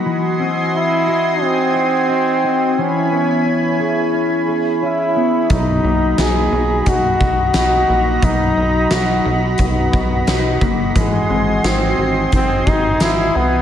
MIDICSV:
0, 0, Header, 1, 6, 480
1, 0, Start_track
1, 0, Key_signature, 5, "major"
1, 0, Tempo, 681818
1, 35, Time_signature, 4, 2, 24, 8
1, 9588, End_track
2, 0, Start_track
2, 0, Title_t, "Analog synth pad"
2, 0, Program_c, 0, 89
2, 0, Note_on_c, 0, 66, 75
2, 39, Note_on_c, 0, 80, 68
2, 39, Note_on_c, 0, 84, 90
2, 41, Note_on_c, 0, 75, 71
2, 1928, Note_off_c, 0, 66, 0
2, 1938, Note_off_c, 0, 80, 0
2, 1938, Note_off_c, 0, 84, 0
2, 1939, Note_off_c, 0, 75, 0
2, 1954, Note_on_c, 0, 64, 77
2, 1957, Note_on_c, 0, 83, 88
2, 1958, Note_on_c, 0, 73, 68
2, 1959, Note_on_c, 0, 80, 69
2, 3856, Note_off_c, 0, 64, 0
2, 3858, Note_off_c, 0, 73, 0
2, 3858, Note_off_c, 0, 80, 0
2, 3866, Note_on_c, 0, 75, 77
2, 3868, Note_on_c, 0, 66, 77
2, 3868, Note_on_c, 0, 82, 70
2, 7683, Note_off_c, 0, 75, 0
2, 7684, Note_off_c, 0, 82, 0
2, 7688, Note_off_c, 0, 83, 0
2, 7708, Note_on_c, 0, 80, 77
2, 7710, Note_on_c, 0, 75, 74
2, 7710, Note_on_c, 0, 84, 86
2, 9588, Note_off_c, 0, 66, 0
2, 9588, Note_off_c, 0, 75, 0
2, 9588, Note_off_c, 0, 80, 0
2, 9588, Note_off_c, 0, 84, 0
2, 9588, End_track
3, 0, Start_track
3, 0, Title_t, "Clean electric guitar"
3, 0, Program_c, 1, 27
3, 0, Note_on_c, 1, 58, 52
3, 0, Note_on_c, 1, 63, 52
3, 39, Note_on_c, 1, 52, 73
3, 83, Note_off_c, 1, 58, 0
3, 279, Note_on_c, 1, 60, 54
3, 759, Note_on_c, 1, 66, 63
3, 994, Note_off_c, 1, 63, 0
3, 996, Note_on_c, 1, 63, 53
3, 1226, Note_off_c, 1, 66, 0
3, 1235, Note_on_c, 1, 66, 57
3, 1464, Note_off_c, 1, 63, 0
3, 1473, Note_on_c, 1, 63, 55
3, 1708, Note_off_c, 1, 60, 0
3, 1717, Note_on_c, 1, 60, 53
3, 1955, Note_off_c, 1, 52, 0
3, 1958, Note_on_c, 1, 52, 76
3, 2002, Note_off_c, 1, 63, 0
3, 2003, Note_off_c, 1, 66, 0
3, 2004, Note_off_c, 1, 60, 0
3, 2194, Note_on_c, 1, 59, 51
3, 2434, Note_on_c, 1, 61, 51
3, 2675, Note_on_c, 1, 68, 62
3, 2902, Note_off_c, 1, 61, 0
3, 2911, Note_on_c, 1, 61, 50
3, 3146, Note_off_c, 1, 68, 0
3, 3155, Note_on_c, 1, 68, 55
3, 3386, Note_off_c, 1, 61, 0
3, 3395, Note_on_c, 1, 61, 52
3, 3631, Note_off_c, 1, 59, 0
3, 3633, Note_on_c, 1, 59, 50
3, 3875, Note_off_c, 1, 52, 0
3, 3878, Note_on_c, 1, 54, 69
3, 3923, Note_off_c, 1, 61, 0
3, 3923, Note_off_c, 1, 68, 0
3, 4111, Note_off_c, 1, 59, 0
3, 4114, Note_on_c, 1, 58, 52
3, 4354, Note_on_c, 1, 63, 54
3, 4592, Note_on_c, 1, 66, 59
3, 4832, Note_off_c, 1, 63, 0
3, 4834, Note_on_c, 1, 63, 54
3, 5072, Note_off_c, 1, 66, 0
3, 5075, Note_on_c, 1, 66, 55
3, 5312, Note_off_c, 1, 63, 0
3, 5315, Note_on_c, 1, 63, 54
3, 5545, Note_off_c, 1, 58, 0
3, 5554, Note_on_c, 1, 58, 52
3, 5795, Note_off_c, 1, 54, 0
3, 5797, Note_on_c, 1, 54, 73
3, 6035, Note_off_c, 1, 58, 0
3, 6273, Note_off_c, 1, 63, 0
3, 6276, Note_on_c, 1, 63, 51
3, 6510, Note_off_c, 1, 66, 0
3, 6513, Note_on_c, 1, 66, 54
3, 6754, Note_off_c, 1, 63, 0
3, 6757, Note_on_c, 1, 63, 49
3, 6994, Note_off_c, 1, 66, 0
3, 6997, Note_on_c, 1, 66, 53
3, 7233, Note_off_c, 1, 63, 0
3, 7236, Note_on_c, 1, 63, 52
3, 7477, Note_on_c, 1, 58, 56
3, 7711, Note_off_c, 1, 54, 0
3, 7714, Note_on_c, 1, 52, 75
3, 7764, Note_off_c, 1, 58, 0
3, 7953, Note_on_c, 1, 60, 56
3, 7974, Note_off_c, 1, 66, 0
3, 8191, Note_off_c, 1, 63, 0
3, 8194, Note_on_c, 1, 63, 50
3, 8441, Note_on_c, 1, 66, 60
3, 8673, Note_off_c, 1, 63, 0
3, 8681, Note_on_c, 1, 63, 56
3, 8909, Note_off_c, 1, 66, 0
3, 8918, Note_on_c, 1, 66, 58
3, 9158, Note_off_c, 1, 63, 0
3, 9394, Note_off_c, 1, 60, 0
3, 9588, Note_off_c, 1, 52, 0
3, 9588, Note_off_c, 1, 66, 0
3, 9588, End_track
4, 0, Start_track
4, 0, Title_t, "Trombone"
4, 0, Program_c, 2, 57
4, 530, Note_on_c, 2, 64, 99
4, 1011, Note_on_c, 2, 60, 96
4, 1022, Note_off_c, 2, 64, 0
4, 1977, Note_on_c, 2, 61, 83
4, 1988, Note_off_c, 2, 60, 0
4, 2687, Note_off_c, 2, 61, 0
4, 3408, Note_on_c, 2, 64, 82
4, 3892, Note_on_c, 2, 63, 90
4, 3902, Note_off_c, 2, 64, 0
4, 4369, Note_on_c, 2, 68, 92
4, 4380, Note_off_c, 2, 63, 0
4, 4848, Note_on_c, 2, 66, 96
4, 4859, Note_off_c, 2, 68, 0
4, 5322, Note_off_c, 2, 66, 0
4, 5325, Note_on_c, 2, 66, 92
4, 5805, Note_on_c, 2, 63, 93
4, 5815, Note_off_c, 2, 66, 0
4, 6287, Note_on_c, 2, 66, 82
4, 6297, Note_off_c, 2, 63, 0
4, 6571, Note_off_c, 2, 66, 0
4, 6761, Note_on_c, 2, 59, 75
4, 7450, Note_off_c, 2, 59, 0
4, 7734, Note_on_c, 2, 56, 85
4, 8217, Note_on_c, 2, 60, 88
4, 8227, Note_off_c, 2, 56, 0
4, 8686, Note_off_c, 2, 60, 0
4, 8694, Note_on_c, 2, 60, 98
4, 8930, Note_on_c, 2, 63, 89
4, 8941, Note_off_c, 2, 60, 0
4, 9169, Note_on_c, 2, 64, 99
4, 9180, Note_off_c, 2, 63, 0
4, 9408, Note_on_c, 2, 59, 96
4, 9419, Note_off_c, 2, 64, 0
4, 9588, Note_off_c, 2, 59, 0
4, 9588, End_track
5, 0, Start_track
5, 0, Title_t, "Analog synth bass"
5, 0, Program_c, 3, 38
5, 3874, Note_on_c, 3, 35, 94
5, 4086, Note_off_c, 3, 35, 0
5, 4112, Note_on_c, 3, 35, 91
5, 4325, Note_off_c, 3, 35, 0
5, 4353, Note_on_c, 3, 35, 94
5, 4566, Note_off_c, 3, 35, 0
5, 4591, Note_on_c, 3, 35, 92
5, 4804, Note_off_c, 3, 35, 0
5, 4832, Note_on_c, 3, 35, 100
5, 5045, Note_off_c, 3, 35, 0
5, 5075, Note_on_c, 3, 35, 84
5, 5286, Note_off_c, 3, 35, 0
5, 5316, Note_on_c, 3, 35, 85
5, 5527, Note_off_c, 3, 35, 0
5, 5557, Note_on_c, 3, 34, 93
5, 5768, Note_off_c, 3, 34, 0
5, 5792, Note_on_c, 3, 35, 91
5, 6004, Note_off_c, 3, 35, 0
5, 6034, Note_on_c, 3, 35, 87
5, 6246, Note_off_c, 3, 35, 0
5, 6274, Note_on_c, 3, 35, 96
5, 6486, Note_off_c, 3, 35, 0
5, 6516, Note_on_c, 3, 35, 89
5, 6727, Note_off_c, 3, 35, 0
5, 6752, Note_on_c, 3, 35, 90
5, 6965, Note_off_c, 3, 35, 0
5, 6993, Note_on_c, 3, 35, 91
5, 7205, Note_off_c, 3, 35, 0
5, 7233, Note_on_c, 3, 35, 81
5, 7445, Note_off_c, 3, 35, 0
5, 7474, Note_on_c, 3, 30, 79
5, 7686, Note_off_c, 3, 30, 0
5, 7713, Note_on_c, 3, 32, 101
5, 7925, Note_off_c, 3, 32, 0
5, 7953, Note_on_c, 3, 32, 91
5, 8165, Note_off_c, 3, 32, 0
5, 8196, Note_on_c, 3, 32, 102
5, 8407, Note_off_c, 3, 32, 0
5, 8436, Note_on_c, 3, 32, 91
5, 8647, Note_off_c, 3, 32, 0
5, 8677, Note_on_c, 3, 32, 101
5, 8888, Note_off_c, 3, 32, 0
5, 8919, Note_on_c, 3, 32, 96
5, 9129, Note_off_c, 3, 32, 0
5, 9160, Note_on_c, 3, 32, 85
5, 9369, Note_off_c, 3, 32, 0
5, 9402, Note_on_c, 3, 36, 84
5, 9588, Note_off_c, 3, 36, 0
5, 9588, End_track
6, 0, Start_track
6, 0, Title_t, "Drums"
6, 3871, Note_on_c, 9, 42, 75
6, 3873, Note_on_c, 9, 36, 93
6, 3942, Note_off_c, 9, 42, 0
6, 3943, Note_off_c, 9, 36, 0
6, 4352, Note_on_c, 9, 38, 101
6, 4352, Note_on_c, 9, 42, 66
6, 4422, Note_off_c, 9, 42, 0
6, 4423, Note_off_c, 9, 38, 0
6, 4831, Note_on_c, 9, 42, 72
6, 4833, Note_on_c, 9, 36, 81
6, 4901, Note_off_c, 9, 42, 0
6, 4903, Note_off_c, 9, 36, 0
6, 5073, Note_on_c, 9, 36, 81
6, 5144, Note_off_c, 9, 36, 0
6, 5306, Note_on_c, 9, 42, 71
6, 5309, Note_on_c, 9, 38, 99
6, 5377, Note_off_c, 9, 42, 0
6, 5379, Note_off_c, 9, 38, 0
6, 5791, Note_on_c, 9, 36, 92
6, 5791, Note_on_c, 9, 42, 75
6, 5861, Note_off_c, 9, 36, 0
6, 5862, Note_off_c, 9, 42, 0
6, 6270, Note_on_c, 9, 42, 60
6, 6271, Note_on_c, 9, 38, 103
6, 6341, Note_off_c, 9, 38, 0
6, 6341, Note_off_c, 9, 42, 0
6, 6743, Note_on_c, 9, 42, 67
6, 6751, Note_on_c, 9, 36, 73
6, 6814, Note_off_c, 9, 42, 0
6, 6821, Note_off_c, 9, 36, 0
6, 6994, Note_on_c, 9, 36, 81
6, 7064, Note_off_c, 9, 36, 0
6, 7232, Note_on_c, 9, 42, 72
6, 7235, Note_on_c, 9, 38, 110
6, 7303, Note_off_c, 9, 42, 0
6, 7305, Note_off_c, 9, 38, 0
6, 7472, Note_on_c, 9, 36, 85
6, 7543, Note_off_c, 9, 36, 0
6, 7713, Note_on_c, 9, 36, 96
6, 7715, Note_on_c, 9, 42, 69
6, 7784, Note_off_c, 9, 36, 0
6, 7786, Note_off_c, 9, 42, 0
6, 8197, Note_on_c, 9, 42, 68
6, 8198, Note_on_c, 9, 38, 100
6, 8268, Note_off_c, 9, 38, 0
6, 8268, Note_off_c, 9, 42, 0
6, 8675, Note_on_c, 9, 42, 69
6, 8678, Note_on_c, 9, 36, 80
6, 8745, Note_off_c, 9, 42, 0
6, 8748, Note_off_c, 9, 36, 0
6, 8919, Note_on_c, 9, 36, 83
6, 8989, Note_off_c, 9, 36, 0
6, 9153, Note_on_c, 9, 42, 64
6, 9156, Note_on_c, 9, 38, 99
6, 9224, Note_off_c, 9, 42, 0
6, 9226, Note_off_c, 9, 38, 0
6, 9588, End_track
0, 0, End_of_file